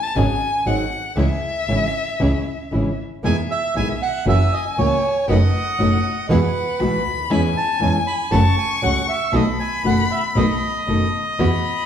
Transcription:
0.03 A5
0.15 G#1 C#3 F#3 C#4 D#4 F#4 G#4 G#5
0.66 G#1 D#3 F#3 C4 D#4 F#4 G#4 F#5
1.16 C#2 C#3 E3 G#3 C#4 E4 G#4 E5
1.68 G#1 C#3 E3 G#3 C#4 E4 G#4
2.19 C#2 C#3 E3 G#3 C#4 E4 G#4
2.71 G#1 C#3 E3 G#3 C#4 E4 G#4
3.24 E2 B2 D#3 G#3 B3 D#4 E4 G#4 E5 G#5
3.51 E5
3.75 B1 B2 D#3 G#3 B3 D#4 E4 G#4 G#5
4.03 F#5
4.25 F#1 C#3 E3 A#3 C#4 E4 F#4 A#4 E5 G#5
4.53 D#5
4.78 C#2 C#3 E3 A#3 C#4 E4 F#4 A#4 C#5
5.28 F#1 B2 F#3 A3 D#4 F#4 A4 B4 D#5 F#5
5.79 F#1 B2 F#3 A3 D#4 F#4 A4 B4
6.29 E2 B2 E3 G#3 B3 E4 F#4 G#4 B4 F#5
6.80 B1 B2 E3 G#3 B3 E4 F#4 G#4 B5
7.05 D2
7.30 E2 E3 G#3 C#4 E4 G#4 G#5 B5
7.57 A5
7.79 E2 E3 G#3 C#4 E4 G#4 G#5
8.07 B5
8.31 F#1 C#3 F#3 A3 C#4 F#4 A4 A5 C#6
8.58 G#5
8.82 C#2 C#3 F#3 A3 C#4 F#4 A4 F#5
9.09 E5
9.32 B1 B2 D#3 A3 B3 D#4 F#4 A4 D#5 B5
9.60 G#5
9.84 F#1 B2 D#3 A3 B3 D#4 F#4 A4 F#5
10.11 E5
10.35 B1 B2 D#3 A3 B3 D#4 F#4 A4 D#5
10.87 F#1 B2 D#3 A3 B3 D#4 F#4 A4
11.39 E2 B2 E3 B3 E4 F#4 B5

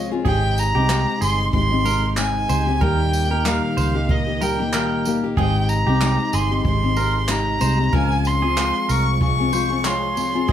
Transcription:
Already playing: C2 F3 G#3 C4 F4 G#4
0.11 C4 F4 G#4
0.25 G#1 C3 G#3 C4 D#4 G4 G#4 G5, kick
0.58 A#5, tambourine
0.75 C2 C4 D#4 G4
0.89 G#3 C4 D#4 G4, clap, tambourine
1.21 G1 G#4 C6, tambourine
1.53 G#1 G#3 C4 D#4 G4 C6, kick
1.70 C4 D#4 G4
1.85 G#3 C4 D#4 G4 A#4, tambourine
2.17 G#3 C4 D#4 G#5, clap, tambourine
2.49 C#2 G#3 C4 D#4 G4 C5, tambourine
2.67 C4 D#4 G4
2.81 D#2 A#2 D#3 G3 A#3 D#4 G4 A#4 G5, kick
3.13 tambourine
3.30 A#3 D#4 G4 A#4
3.44 D#3 G3 A#3 D#4 G4 F5, clap, tambourine
3.77 C#2 C5, tambourine
3.95 A#3 D#4 G4
4.09 G3 A#3 D#4 G4 D#5, kick
4.26 A#3 D#4 G4
4.41 G3 A#3 D#4 G4 A#4 G5, tambourine
4.58 A#3 D#4 G4
4.73 D#3 G3 A#3 D#4 G4 A#4, clap, tambourine
5.05 G3 A#3 D#4 G4, tambourine
5.24 A#3 D#4 G4
5.37 G#1 C3 G#3 C4 D#4 G4 G#4 G5, kick
5.69 A#5, tambourine
5.87 C2 C4 D#4 G4
6.01 G#3 C4 D#4 G4, clap, tambourine
6.33 G1 G#4 C6, tambourine
6.51 C4 D#4 G4
6.65 G#1 G#3 C4 D#4 G4 C6, kick
6.82 C4 D#4 G4
6.97 G#3 C4 D#4 G4 A#4, tambourine
7.28 G#3 C4 D#4 G4 A#5, clap, tambourine
7.59 C2 G#3 C4 D#4 G4 C5, tambourine
7.77 C4 D#4 G4
7.93 C#2 C#3 F3 G#3 C4 F4 G#4 A#4 G#5, kick
8.25 C6, tambourine
8.41 C4 F4 G#4
8.56 G#3 C4 F4 G#4, clap, tambourine
8.89 C2 A#4 C#6, tambourine
9.20 G#3 C4 F4 G#4 C#6, kick
9.38 C4 F4 G#4
9.52 G#3 C4 F4 G#4 C5, tambourine
9.70 C4 F4 G#4
9.84 G#3 F4 G#4 C#5 C6, clap, tambourine
10.16 G#3 C4 F4 G#4, tambourine
10.34 C4 F4 G#4
10.48 G#1 G#3 C4 D#4 G4 G#4, kick

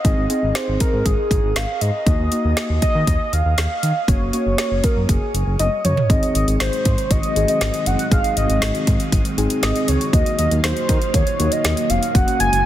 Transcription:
Already playing: D#5
0.05 G#1 C4 D#4 G#4, kick, closed hi-hat
0.17 G#1
0.30 C4 D#4 G#4, closed hi-hat
0.43 G#1
0.55 C5, snare, closed hi-hat
0.68 G#1
0.80 A#4, kick, closed hi-hat
0.93 G#2
1.06 G#1 G#4, kick, closed hi-hat
1.31 G#1, kick, closed hi-hat
1.44 G#1
1.56 G#1 F5, snare, closed hi-hat
1.81 G#2 D#5, closed hi-hat
2.06 D#2 A#3 D#4 F#4, kick, closed hi-hat
2.19 D#2
2.32 A#3 D#4 F#4, closed hi-hat
2.44 D#2
2.57 snare, closed hi-hat
2.70 D#2
2.82 D#5, kick, closed hi-hat
2.95 D#3
3.07 D#2, kick, closed hi-hat
3.33 D#2 F5, closed hi-hat
3.45 D#2
3.58 D#2, snare, closed hi-hat
3.83 D#3, closed hi-hat
4.08 F#1 A#3 C#4 F#4 C#5, kick, closed hi-hat
4.21 F#1
4.33 A#3 C#4 F#4 C#5, closed hi-hat
4.46 F#1
4.58 snare, closed hi-hat
4.71 F#1
4.84 A#4, kick, closed hi-hat
4.96 F#2
5.09 F#1 G#4, kick, closed hi-hat
5.34 F#1, closed hi-hat
5.47 F#1
5.59 F#1 D#5, closed hi-hat, high tom
5.85 F#2 C#5, closed hi-hat, mid tom
5.97 floor tom
6.10 G#1 D#3 G#3 C4 D#4 F#4 G#4 D#5, kick, closed hi-hat
6.23 closed hi-hat
6.35 G#1 D#5, closed hi-hat
6.48 G#1, closed hi-hat
6.60 G#1 C5, snare, closed hi-hat
6.73 closed hi-hat
6.85 G#2, kick, closed hi-hat
6.98 closed hi-hat
7.11 G#1 D#5, kick, closed hi-hat
7.23 closed hi-hat
7.36 G#1 C4 D#4 G#4, closed hi-hat
7.48 D#5, closed hi-hat
7.61 G#1, snare, closed hi-hat
7.74 closed hi-hat
7.86 F#1 F#5, closed hi-hat
7.99 closed hi-hat
8.11 G#1 C4 D#4 G#4 F5, kick, closed hi-hat
8.24 closed hi-hat
8.37 G#1 D#5, closed hi-hat
8.49 G#1, closed hi-hat
8.62 G#1, snare, closed hi-hat
8.75 closed hi-hat
8.87 G#2, kick, closed hi-hat
9.00 closed hi-hat
9.12 G#1, kick, closed hi-hat
9.25 closed hi-hat
9.37 G#1 C4 D#4 G#4, closed hi-hat
9.50 closed hi-hat
9.63 G#1 D#5, snare, closed hi-hat
9.76 closed hi-hat
9.88 C#2 C#5, closed hi-hat
10.01 closed hi-hat
10.13 D#2 F#3 A#3 D#4 F#4 D#5 F5, kick, closed hi-hat
10.26 closed hi-hat
10.38 D#2 D#5, closed hi-hat
10.51 D#2, closed hi-hat
10.64 D#2 C5, snare, closed hi-hat
10.77 closed hi-hat
10.89 D#3, kick, closed hi-hat
11.02 closed hi-hat
11.14 D#2 C#5, kick, closed hi-hat
11.27 closed hi-hat
11.39 D#2 A#3 D#4 F#4, closed hi-hat
11.52 D#5, closed hi-hat
11.64 D#2, snare, closed hi-hat
11.77 closed hi-hat
11.90 F1 F5, closed hi-hat
12.03 closed hi-hat
12.15 F#1 C#3 F#3 G#3 A#3 C#4 F#4 F#5, kick, closed hi-hat
12.28 closed hi-hat
12.40 F#1 G#5, closed hi-hat
12.53 F#1, closed hi-hat

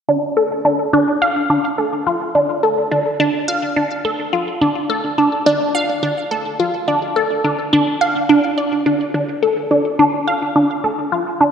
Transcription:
0.09 D4
0.37 A4
0.65 D4
0.93 D4
1.22 F5
1.50 D4
1.78 A4
2.07 F4
2.35 D4
2.63 A4
2.91 D4
3.20 D4
3.48 F5
3.76 D4
4.05 A4
4.33 F4
4.61 D4
4.90 A4
5.18 D4
5.46 D4
5.75 F5
6.03 D4
6.31 A4
6.60 F4
6.88 D4
7.16 A4
7.44 D4
7.73 D4
8.01 F5
8.29 D4
8.58 D5
8.86 D4
9.14 D4
9.43 A4
9.71 D4
9.99 D4
10.27 F5
10.56 D4
10.84 A4
11.12 F4
11.41 D4

